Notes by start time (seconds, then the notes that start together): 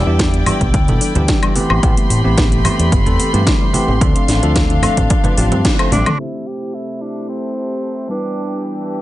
Already playing: E4 D5 G5
0.06 E2 E3 G3 B3 D4 E4 G4
0.19 D4, kick, snare, closed hi-hat
0.34 B3, closed hi-hat
0.46 E3 G3 B3 D4 G4, open hi-hat, low conga, high woodblock
0.61 B1 B3, kick, closed hi-hat
0.74 D2 D4, kick, closed hi-hat
0.88 B2 E3 G3 B3 D4 E4 A4, closed hi-hat, high conga, low conga
1.01 D4, open hi-hat
1.15 D2 E3 G3 B3 D4 G4, closed hi-hat, low conga
1.28 G3, kick, snare, closed hi-hat
1.43 G3, closed hi-hat, high woodblock
1.55 E3 A3 B3 C4 G4 B5 C6, open hi-hat, high conga
1.70 A1 C4, high conga, high woodblock
1.83 A1 G3 A3 B3 C4 G4, kick, closed hi-hat
1.97 A3, closed hi-hat
2.10 A2 B3, open hi-hat
2.24 A1 E3 A3 B3 C4 G4
2.38 B3, kick, snare, closed hi-hat
2.52 A3, closed hi-hat
2.64 E3 G3 A3 B3 C4 G4, open hi-hat, low conga, high woodblock
2.79 E2 A3, closed hi-hat
2.92 G1 B3, kick, closed hi-hat
3.06 E2 E3 A3 B3 C4 A4, closed hi-hat, high conga
3.20 B3, open hi-hat
3.33 G2 E3 A3 B3 C4 G4, closed hi-hat
3.47 G3, kick, snare, closed hi-hat
3.61 G3
3.73 E3 A3 B3 C4 G4, open hi-hat, high conga
3.88 A1 C4, high conga
4.01 D2 F3 A3 C4 D4 A4 F5, kick, closed hi-hat
4.16 C4, closed hi-hat
4.28 A1 D4, snare, open hi-hat
4.42 D2 F3 A3 C4 D4 F4 A4, closed hi-hat
4.56 D4, kick, snare, closed hi-hat
4.70 C4, closed hi-hat
4.82 F3 A3 C4 D4 A4, open hi-hat, low conga, high woodblock
4.97 A1 C4, kick, closed hi-hat
5.10 D4, kick, closed hi-hat
5.24 F3 A3 C4 D4 F4 B4, closed hi-hat, high conga, low conga
5.37 A1 F3 A3 C4 D4 F4 G4, open hi-hat
5.52 G2 C4, closed hi-hat, low conga
5.65 C4, kick, snare, closed hi-hat
5.78 F3 A3 C4 D4 A4 C5, closed hi-hat, high woodblock
5.92 A1 F3 A3 C4 D4 A4, open hi-hat, high tom, high conga
6.06 A3, closed hi-hat, mid tom, high conga, high woodblock
6.18 C3 A3 C4 E4 G4 C5
6.47 G4
6.74 E4
7.01 D4
7.29 C4
8.09 E3 G3 B3 D4 E4 G4 B4